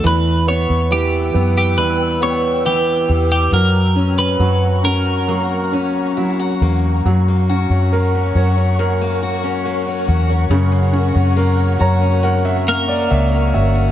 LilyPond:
<<
  \new Staff \with { instrumentName = "Ambient pad" } { \time 4/4 \key fis \phrygian \tempo 4 = 69 <b' g'' e'''>1 | <fis'' ais'' cis'''>1 | <ais' fis'' cis'''>1~ | <ais' fis'' cis'''>1 | }
  \new Staff \with { instrumentName = "Clean electric guitar" } { \time 4/4 \key fis \phrygian b'8 cis''8 g'8. g'16 b'8 cis''8 g'8. g'16 | ais'8. b'8. ais'2 r8 | r1 | r2 r8 <ais ais'>4. | }
  \new Staff \with { instrumentName = "Grand piano" } { \time 4/4 \key fis \phrygian r1 | r1 | r1 | r4. ais''8 fis''16 e''8 d''16 e''8 e''8 | }
  \new Staff \with { instrumentName = "Grand piano" } { \time 4/4 \key fis \phrygian e8 b8 e8 b8 e8 b8 e4 | fis8 cis'8 fis8 cis'8 fis8 cis'8 fis4 | fis8 cis'8 ais'8 cis''8 ais'2 | cis8 cis'8 ais'8 cis''8 ais'2 | }
  \new Staff \with { instrumentName = "Steel-string acoustic guitar" } { \time 4/4 \key fis \phrygian e,8 b8 e'8 b8 g8 b8 e'8 g8 | fis,8 cis'8 fis'8 cis'8 ais8 cis'8 e'16 fis'16 ais8 | fis,16 ais16 fis'16 cis'16 ais16 cis'16 fis'16 cis'16 fis,16 ais16 fis'16 cis'16 ais16 cis'16 fis'16 cis'16 | fis,16 ais16 fis'16 cis'16 ais16 cis'16 fis'16 cis'16 fis,16 ais16 fis'16 cis'16 ais16 cis'16 fis'16 cis'16 | }
  \new Staff \with { instrumentName = "Fingered electric bass" } { \clef bass \time 4/4 \key fis \phrygian e,8. e,8. fis,8 e,4. e,8 | fis,4 fis,2~ fis,8 e,8 | fis,8. fis,8. fis,2 e,8 | fis,8. fis,8. fis,4. cis,8 g,,8 | }
>>